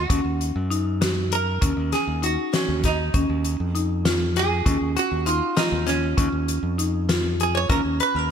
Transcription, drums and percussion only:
0, 0, Header, 1, 2, 480
1, 0, Start_track
1, 0, Tempo, 607287
1, 82, Time_signature, 5, 3, 24, 8
1, 6568, End_track
2, 0, Start_track
2, 0, Title_t, "Drums"
2, 79, Note_on_c, 9, 36, 93
2, 79, Note_on_c, 9, 42, 77
2, 158, Note_off_c, 9, 36, 0
2, 158, Note_off_c, 9, 42, 0
2, 323, Note_on_c, 9, 42, 54
2, 402, Note_off_c, 9, 42, 0
2, 563, Note_on_c, 9, 42, 59
2, 642, Note_off_c, 9, 42, 0
2, 803, Note_on_c, 9, 38, 100
2, 803, Note_on_c, 9, 42, 78
2, 882, Note_off_c, 9, 38, 0
2, 882, Note_off_c, 9, 42, 0
2, 1042, Note_on_c, 9, 42, 66
2, 1121, Note_off_c, 9, 42, 0
2, 1279, Note_on_c, 9, 42, 82
2, 1281, Note_on_c, 9, 36, 95
2, 1358, Note_off_c, 9, 42, 0
2, 1360, Note_off_c, 9, 36, 0
2, 1520, Note_on_c, 9, 38, 29
2, 1520, Note_on_c, 9, 42, 54
2, 1599, Note_off_c, 9, 38, 0
2, 1599, Note_off_c, 9, 42, 0
2, 1762, Note_on_c, 9, 42, 58
2, 1841, Note_off_c, 9, 42, 0
2, 2004, Note_on_c, 9, 38, 99
2, 2004, Note_on_c, 9, 42, 68
2, 2083, Note_off_c, 9, 38, 0
2, 2083, Note_off_c, 9, 42, 0
2, 2241, Note_on_c, 9, 38, 36
2, 2241, Note_on_c, 9, 42, 56
2, 2243, Note_on_c, 9, 36, 81
2, 2320, Note_off_c, 9, 38, 0
2, 2320, Note_off_c, 9, 42, 0
2, 2322, Note_off_c, 9, 36, 0
2, 2481, Note_on_c, 9, 42, 69
2, 2483, Note_on_c, 9, 36, 93
2, 2560, Note_off_c, 9, 42, 0
2, 2562, Note_off_c, 9, 36, 0
2, 2723, Note_on_c, 9, 42, 51
2, 2802, Note_off_c, 9, 42, 0
2, 2966, Note_on_c, 9, 42, 57
2, 3045, Note_off_c, 9, 42, 0
2, 3204, Note_on_c, 9, 38, 95
2, 3204, Note_on_c, 9, 42, 73
2, 3283, Note_off_c, 9, 38, 0
2, 3283, Note_off_c, 9, 42, 0
2, 3447, Note_on_c, 9, 38, 33
2, 3447, Note_on_c, 9, 42, 59
2, 3526, Note_off_c, 9, 38, 0
2, 3526, Note_off_c, 9, 42, 0
2, 3684, Note_on_c, 9, 36, 95
2, 3684, Note_on_c, 9, 42, 69
2, 3763, Note_off_c, 9, 36, 0
2, 3763, Note_off_c, 9, 42, 0
2, 3926, Note_on_c, 9, 42, 54
2, 4005, Note_off_c, 9, 42, 0
2, 4164, Note_on_c, 9, 42, 57
2, 4243, Note_off_c, 9, 42, 0
2, 4403, Note_on_c, 9, 38, 99
2, 4403, Note_on_c, 9, 42, 80
2, 4482, Note_off_c, 9, 38, 0
2, 4482, Note_off_c, 9, 42, 0
2, 4643, Note_on_c, 9, 38, 34
2, 4643, Note_on_c, 9, 42, 63
2, 4722, Note_off_c, 9, 38, 0
2, 4722, Note_off_c, 9, 42, 0
2, 4883, Note_on_c, 9, 36, 96
2, 4883, Note_on_c, 9, 42, 78
2, 4962, Note_off_c, 9, 36, 0
2, 4962, Note_off_c, 9, 42, 0
2, 5124, Note_on_c, 9, 42, 67
2, 5203, Note_off_c, 9, 42, 0
2, 5366, Note_on_c, 9, 42, 65
2, 5445, Note_off_c, 9, 42, 0
2, 5606, Note_on_c, 9, 38, 111
2, 5606, Note_on_c, 9, 42, 83
2, 5685, Note_off_c, 9, 38, 0
2, 5685, Note_off_c, 9, 42, 0
2, 5847, Note_on_c, 9, 42, 67
2, 5926, Note_off_c, 9, 42, 0
2, 6084, Note_on_c, 9, 36, 103
2, 6085, Note_on_c, 9, 42, 71
2, 6163, Note_off_c, 9, 36, 0
2, 6164, Note_off_c, 9, 42, 0
2, 6322, Note_on_c, 9, 42, 61
2, 6402, Note_off_c, 9, 42, 0
2, 6568, End_track
0, 0, End_of_file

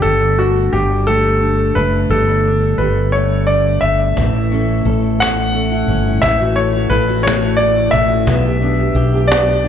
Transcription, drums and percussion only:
0, 0, Header, 1, 2, 480
1, 0, Start_track
1, 0, Tempo, 684151
1, 38, Time_signature, 6, 3, 24, 8
1, 6793, End_track
2, 0, Start_track
2, 0, Title_t, "Cajon"
2, 2926, Note_on_c, 9, 36, 76
2, 2996, Note_off_c, 9, 36, 0
2, 3173, Note_on_c, 9, 38, 23
2, 3244, Note_off_c, 9, 38, 0
2, 3415, Note_on_c, 9, 38, 22
2, 3485, Note_off_c, 9, 38, 0
2, 3663, Note_on_c, 9, 38, 95
2, 3733, Note_off_c, 9, 38, 0
2, 3892, Note_on_c, 9, 38, 22
2, 3962, Note_off_c, 9, 38, 0
2, 4135, Note_on_c, 9, 38, 24
2, 4206, Note_off_c, 9, 38, 0
2, 4370, Note_on_c, 9, 36, 86
2, 4440, Note_off_c, 9, 36, 0
2, 4613, Note_on_c, 9, 38, 27
2, 4683, Note_off_c, 9, 38, 0
2, 4854, Note_on_c, 9, 38, 26
2, 4924, Note_off_c, 9, 38, 0
2, 5104, Note_on_c, 9, 38, 108
2, 5174, Note_off_c, 9, 38, 0
2, 5329, Note_on_c, 9, 38, 23
2, 5399, Note_off_c, 9, 38, 0
2, 5567, Note_on_c, 9, 36, 73
2, 5638, Note_off_c, 9, 36, 0
2, 5804, Note_on_c, 9, 36, 96
2, 5874, Note_off_c, 9, 36, 0
2, 6045, Note_on_c, 9, 38, 27
2, 6115, Note_off_c, 9, 38, 0
2, 6282, Note_on_c, 9, 38, 25
2, 6352, Note_off_c, 9, 38, 0
2, 6536, Note_on_c, 9, 38, 108
2, 6606, Note_off_c, 9, 38, 0
2, 6759, Note_on_c, 9, 38, 25
2, 6793, Note_off_c, 9, 38, 0
2, 6793, End_track
0, 0, End_of_file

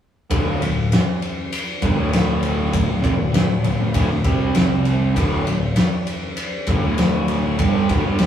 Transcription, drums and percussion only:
0, 0, Header, 1, 2, 480
1, 0, Start_track
1, 0, Tempo, 606673
1, 244, Time_signature, 4, 2, 24, 8
1, 6538, End_track
2, 0, Start_track
2, 0, Title_t, "Drums"
2, 241, Note_on_c, 9, 51, 94
2, 243, Note_on_c, 9, 36, 108
2, 320, Note_off_c, 9, 51, 0
2, 322, Note_off_c, 9, 36, 0
2, 490, Note_on_c, 9, 51, 82
2, 569, Note_off_c, 9, 51, 0
2, 728, Note_on_c, 9, 51, 98
2, 738, Note_on_c, 9, 38, 112
2, 807, Note_off_c, 9, 51, 0
2, 817, Note_off_c, 9, 38, 0
2, 967, Note_on_c, 9, 51, 73
2, 1046, Note_off_c, 9, 51, 0
2, 1206, Note_on_c, 9, 51, 105
2, 1286, Note_off_c, 9, 51, 0
2, 1439, Note_on_c, 9, 51, 78
2, 1444, Note_on_c, 9, 36, 102
2, 1518, Note_off_c, 9, 51, 0
2, 1523, Note_off_c, 9, 36, 0
2, 1687, Note_on_c, 9, 51, 100
2, 1698, Note_on_c, 9, 38, 106
2, 1767, Note_off_c, 9, 51, 0
2, 1777, Note_off_c, 9, 38, 0
2, 1920, Note_on_c, 9, 51, 77
2, 1999, Note_off_c, 9, 51, 0
2, 2163, Note_on_c, 9, 51, 96
2, 2164, Note_on_c, 9, 36, 99
2, 2242, Note_off_c, 9, 51, 0
2, 2243, Note_off_c, 9, 36, 0
2, 2404, Note_on_c, 9, 36, 112
2, 2409, Note_on_c, 9, 51, 73
2, 2483, Note_off_c, 9, 36, 0
2, 2488, Note_off_c, 9, 51, 0
2, 2644, Note_on_c, 9, 51, 99
2, 2654, Note_on_c, 9, 38, 113
2, 2723, Note_off_c, 9, 51, 0
2, 2734, Note_off_c, 9, 38, 0
2, 2882, Note_on_c, 9, 51, 77
2, 2961, Note_off_c, 9, 51, 0
2, 3119, Note_on_c, 9, 51, 97
2, 3123, Note_on_c, 9, 36, 103
2, 3198, Note_off_c, 9, 51, 0
2, 3202, Note_off_c, 9, 36, 0
2, 3357, Note_on_c, 9, 51, 73
2, 3361, Note_on_c, 9, 36, 108
2, 3436, Note_off_c, 9, 51, 0
2, 3440, Note_off_c, 9, 36, 0
2, 3597, Note_on_c, 9, 51, 97
2, 3608, Note_on_c, 9, 38, 113
2, 3677, Note_off_c, 9, 51, 0
2, 3687, Note_off_c, 9, 38, 0
2, 3839, Note_on_c, 9, 51, 70
2, 3919, Note_off_c, 9, 51, 0
2, 4084, Note_on_c, 9, 36, 108
2, 4087, Note_on_c, 9, 51, 98
2, 4163, Note_off_c, 9, 36, 0
2, 4166, Note_off_c, 9, 51, 0
2, 4326, Note_on_c, 9, 51, 76
2, 4405, Note_off_c, 9, 51, 0
2, 4556, Note_on_c, 9, 51, 99
2, 4567, Note_on_c, 9, 38, 115
2, 4636, Note_off_c, 9, 51, 0
2, 4646, Note_off_c, 9, 38, 0
2, 4800, Note_on_c, 9, 51, 80
2, 4879, Note_off_c, 9, 51, 0
2, 5037, Note_on_c, 9, 51, 102
2, 5116, Note_off_c, 9, 51, 0
2, 5275, Note_on_c, 9, 51, 77
2, 5281, Note_on_c, 9, 36, 110
2, 5354, Note_off_c, 9, 51, 0
2, 5360, Note_off_c, 9, 36, 0
2, 5521, Note_on_c, 9, 51, 97
2, 5531, Note_on_c, 9, 38, 115
2, 5600, Note_off_c, 9, 51, 0
2, 5610, Note_off_c, 9, 38, 0
2, 5760, Note_on_c, 9, 51, 77
2, 5840, Note_off_c, 9, 51, 0
2, 6003, Note_on_c, 9, 51, 105
2, 6004, Note_on_c, 9, 36, 108
2, 6082, Note_off_c, 9, 51, 0
2, 6083, Note_off_c, 9, 36, 0
2, 6245, Note_on_c, 9, 36, 108
2, 6246, Note_on_c, 9, 51, 79
2, 6324, Note_off_c, 9, 36, 0
2, 6325, Note_off_c, 9, 51, 0
2, 6477, Note_on_c, 9, 51, 96
2, 6487, Note_on_c, 9, 38, 114
2, 6538, Note_off_c, 9, 38, 0
2, 6538, Note_off_c, 9, 51, 0
2, 6538, End_track
0, 0, End_of_file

